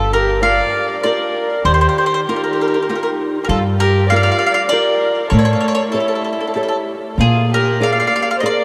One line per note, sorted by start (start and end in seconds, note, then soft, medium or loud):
0.00 0.59 G1 medium
0.00 0.39 G3 soft
0.00 0.13 A4 medium
0.13 0.40 G4 medium
0.13 0.43 A#4 medium
0.42 0.91 F4 soft
0.42 0.91 G4 soft
0.42 0.92 A#4 medium
0.42 1.00 D5 medium
0.42 1.00 F5 medium
1.04 1.53 F4 soft
1.04 1.54 G4 soft
1.04 1.62 A#4 medium
1.04 1.54 A#4 medium
1.04 1.65 D5 medium
1.65 1.86 D#2 medium
1.65 2.26 D#3 medium
1.65 2.23 G4 medium
1.65 1.73 C5 medium
1.74 1.80 C5 medium
1.81 1.87 C5 medium
1.89 1.96 C5 medium
1.98 2.04 C5 medium
2.06 2.12 C5 medium
2.14 2.19 C5 medium
2.28 2.77 D#4 medium
2.28 2.77 F4 soft
2.28 3.16 G4 medium
2.28 2.77 G4 medium
2.28 2.35 A#4 medium
2.36 2.42 A#4 soft
2.44 2.50 A#4 soft
2.53 2.59 A#4 soft
2.61 2.66 A#4 medium
2.68 2.73 A#4 soft
2.74 2.79 A#4 soft
2.82 2.87 A#4 soft
2.89 3.38 D#4 soft
2.89 3.38 F4 soft
2.89 3.38 G4 medium
2.89 2.94 A#4 soft
2.96 3.01 A#4 soft
3.03 3.09 A#4 medium
3.43 3.47 G4 medium
3.43 3.49 A#4 medium
3.48 4.28 G2 medium
3.48 4.09 G3 medium
3.48 3.62 F4 medium
3.48 3.58 A4 medium
3.79 4.07 G4 medium
3.79 4.11 A#4 loud
4.09 4.60 F4 medium
4.09 4.60 G4 soft
4.09 4.61 A#4 medium
4.09 4.67 D5 medium
4.09 4.15 F5 medium
4.16 4.22 F5 medium
4.23 4.30 F5 medium
4.32 4.37 F5 medium
4.39 4.45 F5 medium
4.47 4.53 F5 medium
4.54 4.62 F5 medium
4.69 5.20 F4 medium
4.69 5.28 A#4 medium
4.69 5.21 A#4 medium
4.69 5.30 D5 loud
4.73 5.21 G4 soft
5.30 5.52 A2 medium
5.30 5.92 A3 medium
5.30 5.88 A4 medium
5.30 5.38 C#5 medium
5.39 5.44 C#5 medium
5.45 5.52 C#5 medium
5.53 5.59 C#5 medium
5.61 5.67 C#5 medium
5.68 5.73 C#5 medium
5.75 5.83 C#5 medium
5.92 6.84 E4 medium
5.92 6.43 G4 medium
5.92 5.99 A4 medium
5.92 6.44 A4 medium
5.92 6.44 C#5 medium
6.00 6.07 A4 soft
6.08 6.14 A4 soft
6.15 6.23 A4 soft
6.24 6.31 A4 soft
6.33 6.39 A4 soft
6.41 6.46 A4 soft
6.47 6.53 A4 soft
6.54 7.06 G4 soft
6.54 6.61 A4 soft
6.54 7.06 A4 soft
6.54 7.07 C#5 soft
6.63 6.67 A4 soft
6.68 6.76 A4 medium
7.18 7.99 A#2 medium
7.18 7.79 A#3 soft
7.18 7.49 F4 medium
7.18 7.50 G#4 medium
7.53 7.80 G4 medium
7.53 7.83 A#4 loud
7.80 8.30 G#4 soft
7.80 8.30 A#4 soft
7.80 8.31 D5 medium
7.80 8.37 D5 medium
7.80 7.90 F5 medium
7.92 7.98 F5 medium
8.00 8.06 F5 medium
8.07 8.13 F5 medium
8.16 8.21 F5 medium
8.22 8.28 F5 medium
8.31 8.36 F5 medium
8.37 8.43 C5 medium
8.37 8.45 D#5 medium
8.43 8.64 G#4 soft
8.43 8.64 A#4 soft
8.43 8.64 A#4 medium
8.43 8.64 D5 soft
8.43 8.64 D5 medium